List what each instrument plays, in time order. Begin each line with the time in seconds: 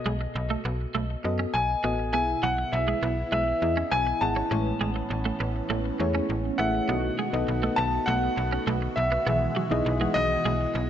Already playing: fm electric piano B2 B3 F#4 A4 D#5, grand piano D#5
0.06 fm bass B1, clean electric guitar G#3
0.21 muted clean electric guitar stroke
0.35 fm bass B1, muted clean electric guitar stroke
0.50 clean electric guitar A3
0.65 fm bass B1, clean electric guitar B3
0.95 fm bass B1, clean electric guitar A3
1.24 fm bass F#2, fm electric piano B3 F#4 A4 D#5, muted clean electric guitar stroke
1.39 clean electric guitar C#4
1.54 fm bass B1, grand piano G#5
1.84 fm bass A1, fm electric piano B3 F#4 A4 D#5, clean electric guitar B3
2.13 fm bass B1, fm electric piano B2 B3 E4 G#4 E5, analog synth pad E3 B3 E4, clean electric guitar B3, grand piano G#5
2.43 fm bass B1, clean electric guitar F#3, grand piano F#5
2.58 muted clean electric guitar stroke
2.72 fm bass B1, grand piano E5, muted clean electric guitar stroke
2.88 clean electric guitar G#3
3.03 fm bass B1, clean electric guitar B3
3.32 fm bass B1, clean electric guitar G#3, grand piano E5
3.62 fm bass E2, fm electric piano B3 E4 G#4 D#5, muted clean electric guitar stroke
3.77 clean electric guitar C#4
3.91 fm bass B1, clean electric guitar B3, grand piano G#5
4.07 muted clean electric guitar stroke
4.21 fm bass G#1, fm electric piano B3 E4 G#4 F#5, grand piano A5
4.36 clean electric guitar C#4
4.51 fm bass A1, fm electric piano A2 G#3 A3 E4 C#5, analog synth pad E3 C#4, clean electric guitar C#4
4.81 fm bass A1, clean electric guitar G#3
4.96 muted clean electric guitar stroke
5.11 fm bass A1, muted clean electric guitar stroke
5.25 clean electric guitar A3
5.40 fm bass A1, clean electric guitar B3
5.70 fm bass A1, clean electric guitar A3
5.99 fm bass E2, fm electric piano A3 E4 G#4 C#5, muted clean electric guitar stroke
6.15 clean electric guitar C#4
6.30 fm bass A1
6.58 fm bass A1, fm electric piano A3 E4 G#4 E5, clean electric guitar B3, grand piano F#5
6.88 fm bass B1, fm electric piano B2 B3 D#4 F#4 A4 D#5, analog polysynth D#3 B3 F#4, analog synth pad A3 B3 F#4, clean electric guitar B3
7.19 clean electric guitar G#3
7.33 fm bass B1, fm electric piano B3 D#4 F#4 A4 D#5, muted clean electric guitar stroke
7.48 fm bass B1, muted clean electric guitar stroke
7.63 clean electric guitar A3, fm electric piano B3 D#4 F#4 A4 D#5
7.76 fm bass B1, clean electric guitar B3, grand piano A5
8.06 fm bass B1, clean electric guitar A3, grand piano F#5
8.37 fm bass B1, muted clean electric guitar stroke
8.52 clean electric guitar C#4
8.67 fm bass B1, clean electric guitar A3
8.82 muted clean electric guitar stroke
8.96 fm bass B1, grand piano E5
9.12 clean electric guitar B3
9.26 fm bass B1, fm electric piano B2 E3 B3 G#4 E5, analog synth pad B2 G#3, analog polysynth D#3 E3 G#4, clean electric guitar B3
9.56 clean electric guitar F#3
9.71 fm bass B1, fm electric piano B3 D#4 E4 G#4 D#5, muted clean electric guitar stroke
9.86 fm bass B1, muted clean electric guitar stroke
10.00 fm electric piano E3 B3 D#4 G#4 F#5, clean electric guitar G#3
10.14 fm bass B1, clean electric guitar B3, grand piano D#5
10.45 fm bass B1, clean electric guitar G#3
10.75 fm bass B1, muted clean electric guitar stroke